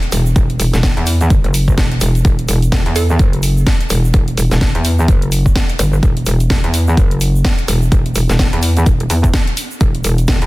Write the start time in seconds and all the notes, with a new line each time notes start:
0.03 closed hi-hat
0.12 E1, open hi-hat, shaker
0.26 shaker
0.36 E1, kick, closed hi-hat, shaker
0.50 closed hi-hat
0.60 E1, open hi-hat, shaker
0.73 E1, snare, closed hi-hat, shaker
0.83 kick, snare, closed hi-hat, shaker
0.97 E2, closed hi-hat
1.06 open hi-hat, shaker
1.21 closed hi-hat, shaker
1.30 G1, kick, closed hi-hat, shaker
1.44 F#1, closed hi-hat
1.54 open hi-hat, shaker
1.68 kick, shaker
1.78 E1, kick, snare, closed hi-hat, shaker
1.92 closed hi-hat
2.01 E1, open hi-hat, shaker
2.15 closed hi-hat, shaker
2.25 E1, kick, closed hi-hat, shaker
2.39 closed hi-hat
2.48 E1, open hi-hat, shaker
2.62 closed hi-hat, shaker
2.72 kick, snare, closed hi-hat, shaker
2.86 E2, closed hi-hat
2.96 A4, open hi-hat, shaker
3.09 shaker
3.19 F#1, kick, closed hi-hat, shaker
3.33 closed hi-hat
3.43 open hi-hat, shaker
3.57 shaker
3.66 kick, snare, closed hi-hat, shaker
3.81 closed hi-hat
3.90 E1, open hi-hat, shaker
4.04 shaker
4.13 E1, kick, closed hi-hat, shaker
4.28 closed hi-hat
4.37 E1, open hi-hat, shaker
4.51 E1, snare, closed hi-hat, shaker
4.61 kick, snare, closed hi-hat, shaker
4.75 E2, closed hi-hat
4.85 open hi-hat, shaker
4.99 shaker
5.08 F#1, kick, closed hi-hat, shaker
5.22 closed hi-hat
5.32 open hi-hat, shaker
5.46 kick, shaker
5.56 kick, snare, closed hi-hat, shaker
5.70 closed hi-hat
5.79 G1, open hi-hat, shaker
5.93 shaker
6.03 E1, kick, closed hi-hat, shaker
6.17 closed hi-hat
6.26 E1, open hi-hat, shaker
6.40 closed hi-hat, shaker
6.50 kick, snare, closed hi-hat, shaker
6.64 E2, closed hi-hat
6.74 open hi-hat, shaker
6.87 shaker
6.97 F#1, kick, closed hi-hat, shaker
7.11 closed hi-hat
7.21 open hi-hat, shaker
7.36 shaker
7.45 kick, snare, closed hi-hat, shaker
7.59 closed hi-hat
7.68 E1, open hi-hat, shaker
7.82 shaker
7.92 E1, kick, closed hi-hat, shaker
8.06 closed hi-hat
8.15 E1, open hi-hat, shaker
8.29 E1, snare, closed hi-hat, shaker
8.39 kick, snare, closed hi-hat, shaker
8.53 E2, closed hi-hat
8.62 open hi-hat, shaker
8.76 closed hi-hat, shaker
8.86 E1, kick, closed hi-hat, shaker
9.00 closed hi-hat
9.10 E2, open hi-hat, shaker
9.24 kick, closed hi-hat, shaker
9.34 kick, snare, closed hi-hat, shaker
9.47 closed hi-hat
9.57 open hi-hat, shaker
9.71 shaker
9.81 E1, kick, closed hi-hat, shaker
9.95 closed hi-hat
10.04 E1, open hi-hat, shaker
10.18 closed hi-hat, shaker
10.27 kick, snare, closed hi-hat, shaker
10.42 E2, closed hi-hat